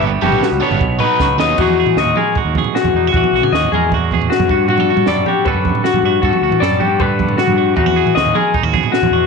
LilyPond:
<<
  \new Staff \with { instrumentName = "Clean electric guitar" } { \time 4/4 \key e \lydian \tempo 4 = 155 r8 g'8 fis'8 cis''4 b'4 dis''8 | fis'4 dis''8 gis'8 r4 fis'4 | fis'4 dis''8 gis'8 r4 fis'4 | fis'4 d''8 g'8 b'4 fis'4 |
fis'4 d''8 g'8 b'4 fis'4 | fis'4 dis''8 gis'8 r4 fis'4 | }
  \new Staff \with { instrumentName = "Clean electric guitar" } { \time 4/4 \key e \lydian << { <g b fis' g'>8 fis'4 b4 dis'8 fis'4 | <gis dis' fis' gis'>8 gis'8 fis'8 ais'8 fis'8 gis'4 dis'16 fis'16 | fis'8 fis'16 gis'16 fis'8 ais'8 fis'8 gis'4 fis'8 | fis'16 a'16 fis'8 a'8 fis'8 a'4 fis'8 fis'8 |
a'8 fis'8 a'8 fis'8 a'4 fis'8 fis'8 | dis'16 fis'16 gis'8 fis'8 ais'8 dis'16 fis'16 gis'4 fis'8 | } \\ { g,8 g4. b,4 fis4 | e4. gis4 b,4. | e4. gis4 b,4 g,8~ | g,4 g4 d4. g,8~ |
g,4 g4 d4. g,8 | e4. gis4 b,4. | } >> }
  \new Staff \with { instrumentName = "Overdriven electric guitar" } { \time 4/4 \key e \lydian r8 <d g b d'>8 r8 <d g b d'>8 r8 <b, fis b dis'>8 r8 <b, fis b dis'>8 | r1 | r1 | r1 |
r1 | r1 | }
  \new Staff \with { instrumentName = "Fingered electric bass" } { \clef bass \time 4/4 \key e \lydian g,,8 fis,,16 b,,16 r16 cis,16 r16 g,,16 b,,8 r8 cis,8 dis,8 | e,8. e16 dis,8 r8. dis,8 r8 e,16 e,8 | e,16 r16 b,,16 cis16 dis,8 e,4.~ e,16 fis,16 g,8~ | g,8. g16 fis,8 r8. fis,8 r8 g,16 g,8 |
g,16 r16 d,16 e16 fis,8 g,4.~ g,16 g,8. | e,8. e16 dis,8 r8. dis,8 r8 e,16 e,8 | }
  \new DrumStaff \with { instrumentName = "Drums" } \drummode { \time 4/4 tomfh8 toml16 tomfh16 sn8. tomfh16 bd8 tomfh8 <bd sn>8 sn8 | <cymc bd tomfh>16 toml8 tomfh16 sn16 tomfh16 toml8 <bd tomfh>8 <bd toml>16 tomfh16 sn16 <tomfh toml>8. | <bd tomfh>16 toml8 tomfh16 sn16 tomfh16 toml8 <bd tomfh>8 <bd toml>16 tomfh16 sn16 <tomfh toml>16 bd8 | tomfh16 toml8 tomfh16 sn16 tomfh16 toml8 <bd tomfh>8 <bd toml>16 tomfh16 sn16 <tomfh toml>8. |
<bd tomfh>16 toml8 tomfh16 sn16 tomfh16 toml8 <bd tomfh>8 <bd toml>16 tomfh16 sn16 <tomfh toml>8. | <bd tomfh>16 toml8 tomfh16 sn16 tomfh16 toml8 <bd tomfh>8 <bd toml>16 tomfh16 sn16 <tomfh toml>8. | }
>>